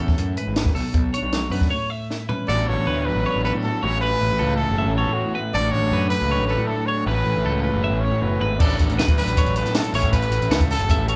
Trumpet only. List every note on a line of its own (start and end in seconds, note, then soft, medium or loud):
2.48 2.70 D5 loud
2.68 3.07 C#5 loud
3.06 3.44 B4 loud
3.45 3.53 B4 loud
3.63 3.86 A4 medium
3.84 4.01 C#5 loud
4.01 4.55 B4 loud
4.56 4.93 A4 loud
4.96 5.15 A4 medium
5.13 5.44 F#4 medium
5.54 5.73 D5 loud
5.72 6.09 C#5 loud
6.10 6.47 B4 loud
6.47 6.69 B4 medium
6.67 6.88 A4 medium
6.86 7.06 C#5 medium
7.07 7.61 B4 loud
7.62 8.02 B4 medium
8.00 8.23 C#5 medium
8.22 8.51 B4 medium
8.58 8.77 D5 medium
9.18 9.53 B4 medium
9.57 9.77 B4 medium
9.76 9.97 A4 medium
9.95 10.12 C#5 medium
10.12 10.66 B4 loud
10.71 11.06 A4 loud
11.08 11.16 A4 medium